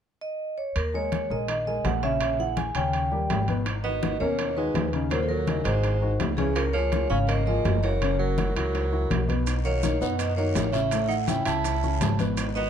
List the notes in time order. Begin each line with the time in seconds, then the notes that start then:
0.21 D#5
0.58 C#5
0.76 D#2 A#4, high conga, high timbale
0.94 G#3 G#4 A#4 C#5, high conga
1.12 high conga, high timbale, low timbale
1.30 A#1 G#3 G#4 A#4 D#5, high conga
1.48 D#3 D#4 D#5, high conga, high timbale
1.67 G#3 G#4 A#4 D#5, high conga
1.84 A#1 F#5, high conga, high timbale, low timbale
2.03 C#3 C#4 C#5 E5, high conga, high timbale
2.21 C#3 C#4 C#5, high conga, high timbale
2.39 E3 E4 G#4 F#5, high conga
2.57 G#5, high conga, high timbale, low timbale
2.75 D#2 C#3 C#4 C#5 G5, high conga, high timbale
2.93 high conga, high timbale
3.12 G3 G4 A#4, high conga
3.30 G#1, high conga, high timbale, low timbale
3.48 B2 B3 B4, high conga, high timbale
3.66 high bongo, high conga, high timbale
3.84 D#3 B3 D#4 F#4 D#5, high conga
4.03 D#3 D#4 F#4, high bongo, high conga, high timbale, low timbale
4.20 D#2 B2 A#3 C#4 A#4 C#5, high bongo, high conga
4.39 high bongo, high conga, high timbale
4.57 D#3 G#3 D#4 F#4 B4, high bongo, high conga
4.74 D#2, high bongo, low bongo, high conga, high timbale, low timbale
4.93 C#3 C#4 D#4, high bongo, high conga, high timbale
5.11 A#2 F#3 A#3 A#4 C5, high bongo, high conga, high timbale
5.23 F3 A4
5.29 F#3 A#4, high conga
5.47 C#3 C#4 D#4, high bongo, high conga, high timbale, low timbale
5.64 G#1 D#3 G#3 D#4 F#4 C5, high bongo, high conga, high timbale
5.84 high bongo, high conga, high timbale
6.02 D#3 D#4 F#4, high bongo, high conga
6.20 C#2, high bongo, low bongo, high conga, high timbale, low timbale
6.37 C#3 E3 C#4 G#4 C#5, high bongo, high conga, high timbale
6.56 F3 A#4, high bongo, high conga, high timbale
6.73 F3 A#3 F4 G#4 C#5, high conga
6.92 F3 F4 G#4, high bongo, high conga, high timbale, low timbale
7.10 G#1 C#3 C#4 C#5 F5, high bongo, high conga
7.28 A#3 D#5, high bongo, high conga, high timbale
7.46 F3 A#3 F4 G#4 D#5, high bongo, high conga
7.65 F#1, high bongo, low bongo, high conga, high timbale, low timbale
7.83 E3 A#3 E4 F#4 C#5, high bongo, high conga, high timbale
8.01 C#3 C#4 C#5, high bongo, high conga, high timbale
8.19 F#3 A#4, high conga
8.38 E3 E4 F#4, high bongo, high conga, high timbale, low timbale
8.55 C#2 E3 F#3 E4 F#4 A#4, high bongo, high conga, high timbale
8.75 high bongo, high conga, high timbale
8.92 E3 E4 F#4, high bongo, high conga
9.10 B1, high bongo, low bongo, high conga, high timbale, low timbale
9.28 B2 B3 B4, high bongo, high conga, high timbale
9.47 high bongo, high conga, high timbale, long guiro, maracas
9.64 D#3 A#3 D#4 F#4 C#5, high conga, maracas
9.83 D#3 D#4 F#4, high bongo, high conga, high timbale, low timbale, short guiro, maracas
10.01 F#2 B2 B3 D#4 B4 F#5, high bongo, high conga, short guiro, maracas
10.18 B3 D#5, high bongo, high conga, high timbale, long guiro, maracas
10.36 D#3 A#3 D#4 F#4 C#5, high bongo, high conga, maracas
10.55 A1, high bongo, low bongo, high conga, high timbale, low timbale, short guiro, maracas
10.72 C#3 C#4 E4 E5, high bongo, high conga, high timbale, short guiro, maracas
10.91 A2 A3 A4, high bongo, high conga, high timbale, long guiro, maracas
11.08 D#4 F#5, high conga, maracas
11.27 C#3 C#4 E4 G5, high bongo, high conga, high timbale, low timbale, short guiro, maracas
11.45 C#2 C#3 C#4 E4 A5, high bongo, high conga, high timbale, short guiro, maracas
11.64 high bongo, high conga, high timbale, long guiro, maracas
11.83 C#3 C#4 E4, high bongo, high conga, maracas
12.01 G#1, high bongo, low bongo, high conga, high timbale, low timbale, short guiro, maracas
12.19 B2 B3 B4, high bongo, high conga, high timbale, short guiro, maracas
12.37 high bongo, high conga, high timbale, long guiro, maracas
12.55 D#3 B3 D#4 F#4 D#5, high conga, maracas